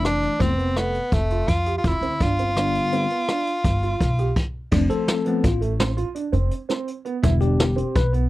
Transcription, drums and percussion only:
0.05 cross-stick, closed hi-hat
0.23 closed hi-hat
0.40 kick, closed hi-hat
0.59 closed hi-hat
0.76 cross-stick, closed hi-hat
0.94 closed hi-hat
1.12 kick, closed hi-hat
1.30 closed hi-hat
1.48 kick, closed hi-hat
1.66 closed hi-hat
1.84 kick, closed hi-hat
2.02 closed hi-hat
2.20 kick, closed hi-hat
2.39 closed hi-hat
2.56 cross-stick, closed hi-hat
2.75 closed hi-hat
2.92 closed hi-hat
3.10 closed hi-hat
3.28 cross-stick, closed hi-hat
3.47 closed hi-hat
3.64 kick, closed hi-hat
3.83 closed hi-hat
4.00 kick, closed hi-hat
4.18 closed hi-hat
4.36 kick, crash
4.71 kick, crash
4.90 closed hi-hat
5.08 snare, closed hi-hat
5.26 closed hi-hat
5.44 kick, closed hi-hat
5.62 closed hi-hat
5.80 snare, closed hi-hat
5.97 closed hi-hat
6.15 closed hi-hat
6.33 closed hi-hat
6.51 closed hi-hat
6.69 snare, closed hi-hat
6.88 closed hi-hat
7.05 closed hi-hat
7.23 kick, closed hi-hat
7.41 closed hi-hat
7.60 snare, closed hi-hat
7.78 closed hi-hat
7.95 kick, closed hi-hat
8.14 closed hi-hat

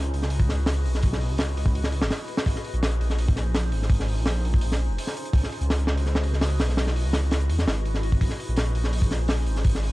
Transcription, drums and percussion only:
0.03 closed hi-hat
0.14 open hi-hat
0.22 snare
0.30 open hi-hat
0.40 kick
0.49 snare, open hi-hat
0.66 snare, open hi-hat
0.86 open hi-hat
0.94 snare
1.02 kick, open hi-hat
1.13 snare
1.21 open hi-hat
1.38 snare, open hi-hat
1.57 open hi-hat
1.66 kick
1.75 open hi-hat
1.84 snare
1.92 open hi-hat
2.02 snare
2.10 snare, open hi-hat
2.28 open hi-hat
2.37 snare, open hi-hat
2.46 kick, open hi-hat
2.55 snare
2.64 open hi-hat
2.74 closed hi-hat
2.83 snare, open hi-hat
2.91 closed hi-hat
3.01 open hi-hat
3.10 snare
3.19 open hi-hat
3.28 kick
3.36 snare, open hi-hat
3.55 snare, open hi-hat
3.72 open hi-hat
3.82 snare
3.90 kick, open hi-hat
4.00 snare
4.08 open hi-hat
4.25 snare, open hi-hat
4.45 open hi-hat
4.54 kick
4.61 open hi-hat
4.72 snare
4.98 open hi-hat
5.07 snare
5.17 open hi-hat
5.25 closed hi-hat
5.33 kick, open hi-hat
5.43 snare
5.52 open hi-hat
5.61 closed hi-hat
5.70 snare, open hi-hat
5.79 closed hi-hat
5.87 snare
5.97 open hi-hat
6.06 snare
6.15 snare
6.24 open hi-hat
6.33 snare
6.41 snare, open hi-hat
6.60 snare, open hi-hat
6.69 snare
6.77 snare, open hi-hat
6.87 snare
6.96 open hi-hat
7.13 snare, open hi-hat
7.31 snare, open hi-hat
7.41 closed hi-hat
7.50 open hi-hat
7.59 snare
7.68 snare, open hi-hat
7.77 closed hi-hat
7.85 open hi-hat
7.94 snare
8.03 open hi-hat
8.12 kick
8.21 kick, open hi-hat
8.29 snare
8.40 open hi-hat
8.48 closed hi-hat
8.56 snare, open hi-hat
8.66 closed hi-hat
8.75 open hi-hat
8.84 snare
8.93 open hi-hat
9.02 kick
9.11 snare, open hi-hat
9.28 snare, open hi-hat
9.46 open hi-hat
9.56 snare
9.64 kick, open hi-hat
9.75 snare
9.83 open hi-hat

